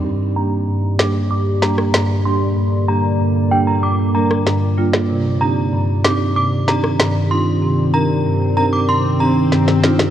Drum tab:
SD |------o---oro---|-----------ro--o|------o---oro---|------------oooo|